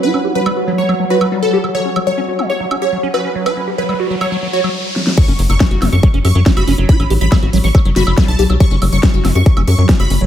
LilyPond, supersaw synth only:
\new Staff \with { instrumentName = "Supersaw synth" } { \time 4/4 \key fis \phrygian \tempo 4 = 140 b'8 r16 b'8 r8 cis''8 r16 b'8 r16 a'8 r16 | cis''8 r16 cis''8 r8 cis''8 r16 cis''8 r16 b'8 r16 | b'8 r16 b'8 r8 cis''8 r16 cis''8 r4 | cis'''8 r16 cis'''8 r8 cis'''8 r16 cis'''8 r16 b''8 r16 |
b''8 r16 b''8 r8 cis'''8 r16 b''8 r16 a''8 r16 | cis'''8 r16 cis'''8 r8 cis'''8 r16 cis'''8 r16 b''8 r16 | }